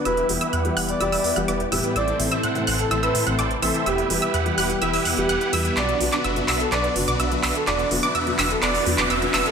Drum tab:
HH |xxoxxxoxxooxxxox|xxoxxxoxxxoxxxox|xxoxxxoxxooxxxox|xxoxxxoxxxoxxxox|
CP |----------------|----------------|----------------|x--x--x-x-----x-|

HH |xxoxxxoxxooxxxox|
CP |x-----x-x--x--x-|